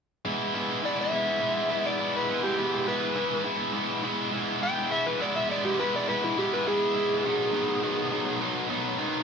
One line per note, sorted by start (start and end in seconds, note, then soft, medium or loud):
0.25 0.53 E3 medium
0.25 0.54 G#3 medium
0.25 0.54 B3 medium
0.25 0.55 E4 medium
0.54 0.83 E3 medium
0.54 0.83 G#3 medium
0.54 0.83 B3 medium
0.54 0.84 E4 medium
0.83 1.12 E3 medium
0.83 1.12 G#3 medium
0.83 1.12 B3 medium
0.83 1.13 E4 medium
0.83 0.98 D5 medium
1.01 1.84 E5 medium
1.12 1.40 E3 medium
1.12 1.41 G#3 medium
1.12 1.41 B3 medium
1.12 1.41 E4 medium
1.41 1.70 E3 medium
1.41 1.70 G#3 medium
1.41 1.70 B3 medium
1.41 1.71 E4 medium
1.70 1.99 E3 medium
1.70 1.99 G#3 medium
1.70 2.00 B3 medium
1.70 2.00 E4 medium
1.86 2.14 D5 medium
1.99 2.28 E3 medium
1.99 2.28 G#3 medium
1.99 2.29 B3 medium
1.99 2.29 E4 medium
2.16 2.43 B4 medium
2.29 2.57 E3 medium
2.29 2.57 G#3 medium
2.29 2.57 B3 medium
2.29 2.58 E4 medium
2.43 2.86 G4 medium
2.57 2.86 E3 medium
2.57 2.86 G#3 medium
2.57 2.87 B3 medium
2.57 2.87 E4 medium
2.86 3.15 E3 medium
2.86 3.16 G#3 medium
2.86 3.16 B3 medium
2.86 3.17 E4 medium
2.86 3.44 B4 medium
3.16 3.44 E3 medium
3.16 3.44 G#3 medium
3.16 3.45 B3 medium
3.16 3.45 E4 medium
3.44 3.72 E3 medium
3.44 3.73 G#3 medium
3.44 3.74 B3 medium
3.44 3.73 E4 medium
3.73 4.02 E3 medium
3.73 4.02 G#3 medium
3.73 4.03 B3 medium
3.73 4.03 E4 medium
4.03 4.31 E3 medium
4.03 4.31 G#3 medium
4.03 4.32 B3 medium
4.03 4.32 E4 medium
4.32 4.60 E3 medium
4.32 4.60 G#3 medium
4.32 4.62 B3 medium
4.32 4.61 E4 medium
4.62 4.89 E3 medium
4.62 4.90 G#3 medium
4.62 4.91 B3 medium
4.62 4.90 E4 medium
4.62 4.91 G5 medium
4.91 5.19 E3 medium
4.91 5.19 G#3 medium
4.91 5.20 B3 medium
4.91 5.20 E4 medium
4.91 5.06 E5 medium
5.06 5.20 B4 medium
5.20 5.48 E3 medium
5.20 5.49 G#3 medium
5.20 5.50 B3 medium
5.20 5.49 E4 medium
5.20 5.35 D5 medium
5.36 5.49 E5 medium
5.50 5.77 E3 medium
5.50 5.77 G#3 medium
5.50 5.79 B3 medium
5.50 5.78 E4 loud
5.50 5.64 D5 medium
5.65 5.78 G4 medium
5.78 6.07 E3 medium
5.78 6.07 G#3 medium
5.78 6.08 B3 medium
5.78 6.08 E4 medium
5.78 5.93 B4 medium
5.96 6.09 D5 medium
6.08 6.36 E3 medium
6.08 6.36 G#3 medium
6.08 6.37 B3 medium
6.08 6.37 E4 medium
6.08 6.22 B4 medium
6.24 6.37 E4 medium
6.37 6.64 E3 medium
6.37 6.65 G#3 medium
6.37 6.66 B3 medium
6.37 6.66 E4 medium
6.37 6.52 G4 medium
6.54 6.67 B4 medium
6.66 6.94 E3 medium
6.66 6.95 G#3 medium
6.66 6.96 B3 medium
6.66 6.95 E4 loud
6.66 8.38 G#4 medium
6.95 7.23 E3 medium
6.95 7.23 G#3 medium
6.95 7.25 B3 medium
6.95 7.23 E4 medium
7.25 7.52 B2 medium
7.25 7.52 D#3 medium
7.25 7.53 F#3 medium
7.25 7.53 B3 medium
7.25 7.53 D#4 medium
7.53 7.81 B2 medium
7.53 7.81 D#3 medium
7.53 7.82 F#3 medium
7.53 7.82 B3 medium
7.53 7.82 D#4 medium
7.82 8.10 B2 medium
7.82 8.10 D#3 medium
7.82 8.10 F#3 medium
7.82 8.11 B3 medium
7.82 8.11 D#4 medium
8.11 8.39 B2 medium
8.11 8.39 D#3 medium
8.11 8.39 F#3 medium
8.11 8.40 B3 medium
8.11 8.40 D#4 medium
8.40 8.68 B2 medium
8.40 8.69 D#3 medium
8.40 8.69 F#3 medium
8.40 8.69 B3 medium
8.40 8.70 D#4 medium
8.69 8.97 B2 medium
8.69 8.97 D#3 medium
8.69 8.97 F#3 medium
8.69 8.98 B3 medium
8.69 8.98 D#4 medium
8.98 9.23 B2 medium
8.98 9.23 D#3 medium
8.98 9.23 F#3 medium
8.98 9.23 B3 medium
8.98 9.23 D#4 medium